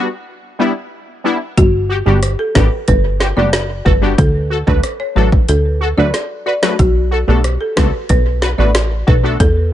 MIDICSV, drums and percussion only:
0, 0, Header, 1, 2, 480
1, 0, Start_track
1, 0, Key_signature, 2, "minor"
1, 0, Tempo, 652174
1, 1159, Time_signature, 4, 2, 24, 8
1, 7161, End_track
2, 0, Start_track
2, 0, Title_t, "Drums"
2, 1159, Note_on_c, 9, 36, 120
2, 1159, Note_on_c, 9, 42, 89
2, 1233, Note_off_c, 9, 36, 0
2, 1233, Note_off_c, 9, 42, 0
2, 1638, Note_on_c, 9, 42, 83
2, 1639, Note_on_c, 9, 37, 67
2, 1712, Note_off_c, 9, 42, 0
2, 1713, Note_off_c, 9, 37, 0
2, 1879, Note_on_c, 9, 38, 122
2, 1881, Note_on_c, 9, 36, 98
2, 1952, Note_off_c, 9, 38, 0
2, 1954, Note_off_c, 9, 36, 0
2, 2117, Note_on_c, 9, 42, 82
2, 2121, Note_on_c, 9, 36, 91
2, 2191, Note_off_c, 9, 42, 0
2, 2195, Note_off_c, 9, 36, 0
2, 2359, Note_on_c, 9, 38, 74
2, 2432, Note_off_c, 9, 38, 0
2, 2598, Note_on_c, 9, 38, 121
2, 2600, Note_on_c, 9, 42, 85
2, 2672, Note_off_c, 9, 38, 0
2, 2674, Note_off_c, 9, 42, 0
2, 2841, Note_on_c, 9, 36, 101
2, 2915, Note_off_c, 9, 36, 0
2, 3079, Note_on_c, 9, 36, 121
2, 3080, Note_on_c, 9, 42, 91
2, 3153, Note_off_c, 9, 36, 0
2, 3153, Note_off_c, 9, 42, 0
2, 3441, Note_on_c, 9, 36, 90
2, 3515, Note_off_c, 9, 36, 0
2, 3558, Note_on_c, 9, 42, 84
2, 3559, Note_on_c, 9, 37, 69
2, 3632, Note_off_c, 9, 42, 0
2, 3633, Note_off_c, 9, 37, 0
2, 3919, Note_on_c, 9, 36, 108
2, 3992, Note_off_c, 9, 36, 0
2, 4037, Note_on_c, 9, 42, 80
2, 4111, Note_off_c, 9, 42, 0
2, 4518, Note_on_c, 9, 38, 69
2, 4520, Note_on_c, 9, 42, 88
2, 4592, Note_off_c, 9, 38, 0
2, 4593, Note_off_c, 9, 42, 0
2, 4878, Note_on_c, 9, 38, 109
2, 4951, Note_off_c, 9, 38, 0
2, 4999, Note_on_c, 9, 36, 116
2, 4999, Note_on_c, 9, 42, 86
2, 5072, Note_off_c, 9, 36, 0
2, 5072, Note_off_c, 9, 42, 0
2, 5478, Note_on_c, 9, 42, 81
2, 5479, Note_on_c, 9, 37, 70
2, 5552, Note_off_c, 9, 37, 0
2, 5552, Note_off_c, 9, 42, 0
2, 5718, Note_on_c, 9, 38, 116
2, 5721, Note_on_c, 9, 36, 100
2, 5792, Note_off_c, 9, 38, 0
2, 5794, Note_off_c, 9, 36, 0
2, 5957, Note_on_c, 9, 42, 82
2, 5961, Note_on_c, 9, 36, 94
2, 6030, Note_off_c, 9, 42, 0
2, 6034, Note_off_c, 9, 36, 0
2, 6198, Note_on_c, 9, 38, 70
2, 6272, Note_off_c, 9, 38, 0
2, 6438, Note_on_c, 9, 38, 124
2, 6440, Note_on_c, 9, 42, 88
2, 6512, Note_off_c, 9, 38, 0
2, 6514, Note_off_c, 9, 42, 0
2, 6681, Note_on_c, 9, 36, 100
2, 6755, Note_off_c, 9, 36, 0
2, 6919, Note_on_c, 9, 36, 117
2, 6919, Note_on_c, 9, 42, 88
2, 6993, Note_off_c, 9, 36, 0
2, 6993, Note_off_c, 9, 42, 0
2, 7161, End_track
0, 0, End_of_file